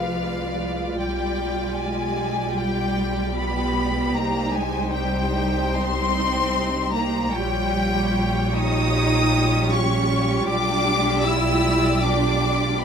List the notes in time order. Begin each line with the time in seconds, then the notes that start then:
Already playing: C2 F3 G#3 F4 B4 D5 F5
0.98 B1 G3 G4 G5
1.78 G#3 G#5
2.57 G3 G5
3.36 B3 B5
4.15 C2 A#3 D#4 C5 A#5
4.53 G#3 G#5
4.92 G3 G5
5.76 C4 C6
6.94 A#3 A#5
7.32 A#1 G3 F4 G4 C#5 G5
8.56 D#4 D#6
9.72 C#4 C#6
10.47 B1 D4 D5 D6
11.24 E4 E6
12.03 D4 D6
12.80 B5